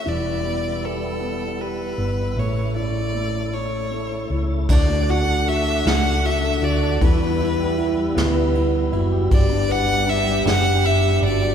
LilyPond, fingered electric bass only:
\new Staff \with { instrumentName = "Fingered electric bass" } { \clef bass \time 6/8 \key d \major \tempo 4. = 52 e,,2~ e,,8 g,,8 | a,,2~ a,,8 cis,8 | d,4. cis,4 d,8 | e,4. d,4 fis,,8 |
g,,4. fis,,4 g,,8 | }